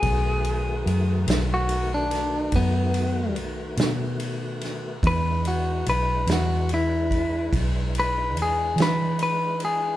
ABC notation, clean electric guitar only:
X:1
M:12/8
L:1/16
Q:3/8=48
K:E
V:1 name="Clean electric guitar"
G6- G F2 =D3 B,4 z8 | B2 F2 B2 F2 E4 z2 B2 G2 B2 B2 G2 |]